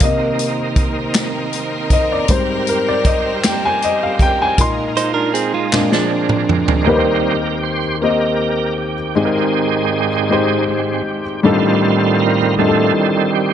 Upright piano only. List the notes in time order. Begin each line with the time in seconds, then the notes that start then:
0.03 C3 A#3 D#4 D#5
1.93 D#5
2.12 D5
2.30 G#2 G3 C4 C5
2.69 A#4
2.89 D5
3.06 D#5
3.46 G5
3.65 G#5
3.84 D#5
4.03 F5
4.22 G5
4.42 G#5
4.59 A#2 G#3 D#4 C6
5.72 A#2 G#3 D4
6.86 D#2 D#3 A#3 C4 D#4 G4 B4
6.95 C5
8.01 A#3 C4 D#4 G4 D#5
9.15 G#1 G#2 G#3 C4 D#4 G4 G#4
9.25 A#4
10.29 G#3 C4 D#4 G4 C5
11.43 A1 A2 G3 D4 D#4 F4 A4
12.59 G3 D4 D#4 F4 G4
12.68 A4